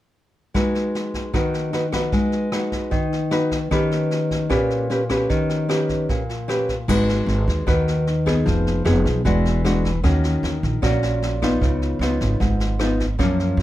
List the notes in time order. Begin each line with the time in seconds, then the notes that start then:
0.54 G#3 D#4 F#4 B4, kick, cross-stick, snare
0.75 snare
0.95 snare
1.14 kick, snare
1.33 D#3 D#4 F#4 B4, kick, cross-stick, snare
1.54 snare
1.73 D#4 F#4 B4, snare
1.92 D#4 F#4 B4, kick, cross-stick, snare
2.12 G#3, kick, snare
2.32 snare
2.52 D#4 F#4 B4, cross-stick, snare
2.72 kick, snare
2.91 D#3, kick, snare
3.12 snare
3.31 D#4 F#4 B4, cross-stick, snare
3.51 kick, snare
3.71 D#3 C#4 G4 B4, kick, cross-stick, snare
3.91 snare
4.11 snare
4.31 kick, snare
4.49 A#2 C#4 G4 B4, kick, cross-stick, snare
4.70 snare
4.90 C#4 G4 B4, snare
5.09 C#4 G4 B4, kick, cross-stick, snare
5.30 D#3, kick, snare
5.49 snare
5.69 C#4 G4 B4, cross-stick, snare
5.89 kick, snare
6.09 A#2, kick, snare
6.29 snare
6.48 C#4 G4 B4, cross-stick, snare
6.69 kick, snare
6.88 G#1 G#3 D#4 F#4 B4, kick, cross-stick, snare, crash
7.09 snare
7.26 G#1, snare
7.48 D#2, kick, snare
7.67 D#2 D#3 D#4 F#4 B4, kick, cross-stick, snare
7.88 snare
8.07 snare
8.26 B3 D#4 G#4, kick, cross-stick, snare
8.45 F1 F3, kick, snare
8.67 snare
8.85 F1 B3 D#4 G#4, cross-stick, snare
9.05 B1, kick, snare
9.25 E1 E3 G#3 D4 F#4, kick, snare
9.45 snare
9.64 G#3 D4 F#4, cross-stick, snare
9.84 kick, snare
10.03 D#2 D#3 A#3 C#4 F#4, kick, cross-stick, snare
10.24 snare
10.43 D#2, snare
10.63 A#1, kick, snare
10.82 A#1 A#2 A#3 C#4 F#4, kick, cross-stick, snare
11.03 snare
11.22 snare
11.42 B3 D#4 F4, kick, cross-stick, snare
11.61 C#2 C#3, kick, snare
11.82 snare
11.99 C#2 B3 D#4 F4, cross-stick, snare
12.20 G#1, kick, snare
12.40 G#1 G#2, kick, snare
12.60 snare
12.79 B3 D#4 F4, cross-stick, snare
13.00 kick, snare
13.19 F#2 F3 A#3 C#4, kick, cross-stick, snare
13.39 snare
13.57 F#2